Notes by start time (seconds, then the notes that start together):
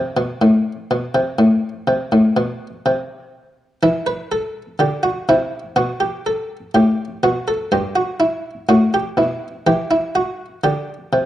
Already playing: C3
0.17 B2
0.42 A2
0.91 B2
1.14 C3
1.39 A2
1.88 C3
2.12 A2
2.37 B2
2.86 C3
3.83 E3 E4
4.07 B4
4.32 A4
4.79 D3 G4
5.03 F#4
5.29 C3 E4
5.76 B2 F#4
6.00 G4
6.26 A4
6.74 A2 G4
7.23 B2 F#4
7.48 A4
7.72 G2 G4
7.95 F#4
8.20 E4
8.69 A2 F#4
8.94 G4
9.17 B2 E4
9.67 E3 G4
9.91 E4
10.15 F#4
10.64 D3 G4
11.13 C3